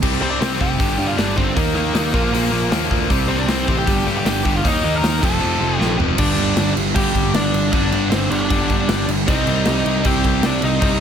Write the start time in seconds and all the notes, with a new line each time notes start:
0.02 C2 C3 G3 C4, kick, crash
0.20 C2 C3 G3 C4 C5
0.30 D4 D5
0.40 C2 C3 G3 C4 C5, snare, open hi-hat
0.58 F1 C3 G3 C4 G4 G5, kick
0.78 G1 G2 D3 G3, kick, open hi-hat
0.97 G2 D3 G3
1.07 F4 F5
1.16 G1 G2 D3 G3 D4 D5, snare, open hi-hat
1.36 G2 D3 G3 C4 C5, kick
1.55 D#2 D#3 A#3 D#4 A#4, kick, open hi-hat
1.74 D#2 D#3 A#3 D#4
1.93 D#2 D#3 A#3 D#4, snare, open hi-hat
2.13 A#1 A#2 F3 A#3, kick
2.32 A#1 A#2 F3 A#3, open hi-hat
2.51 A#1 A#2 F3 A#3
2.70 D#2 A#2 F3 A#3, snare, open hi-hat
2.89 D2 A#2 F3 A#3, kick
3.09 C2 C3 G3 C4, kick, open hi-hat
3.28 C2 C3 G3 C4 C5
3.38 D4 D5
3.47 C2 C3 G3 C4 C5, snare, open hi-hat
3.67 A1 C3 G3 C4, kick
3.77 G4 G5
3.86 G1 G2 D3 G3, kick, open hi-hat
4.06 G2 D3 G3
4.17 G4 G5
4.25 G1 G2 D3 G3 G4, snare, open hi-hat
4.29 G5
4.44 G2 D3 G3, kick
4.56 F4 F5
4.63 D#2 D#3 A#3 D#4, kick, open hi-hat
4.67 D#4 D#5
4.83 D#2 D#3 A#3 D#4
4.95 A#4 A#5
5.01 D#2 D#3 A#3 D#4, snare, open hi-hat
5.20 F1 F2 C3 F3 A4, kick, crash
5.25 A5
5.39 F1 F2 C3 F3
5.59 F1 F2 C3 F3
5.78 A#1 F2 C3 F3 G5, snare
5.98 F1 F2 C3 F3, floor tom
6.17 G1 G2 D3 G3 D4 D5, kick, crash
6.38 G1, crash
6.57 G1, snare, crash
6.76 G1, crash
6.94 G1 G2 D3 G3 G4 G5, kick, crash
7.15 G1, kick, crash
7.33 G1 D4 D5, snare, crash
7.53 G1, crash
7.70 G1 G2 D3 G3 D4 D5, kick, crash
7.92 G1, crash
8.10 G1 C4 C5, snare, crash
8.30 G1 D4 D5, crash
8.48 G1 G2 D3, kick, crash
8.52 G3
8.70 G1, kick, crash
8.88 G1, snare, crash
9.08 G1, crash
9.26 C2 C3 G3 C4 D#4 D#5, kick, crash
9.47 C2, crash
9.65 C2, snare, crash
9.85 C2, crash
10.03 C2 C3 G3 C4 G4 G5, kick, crash
10.24 C2, kick, crash
10.42 C2 D4 D5, snare, crash
10.62 C2 D#4 D#5, crash
10.79 C2 C3 G3 C4, kick, crash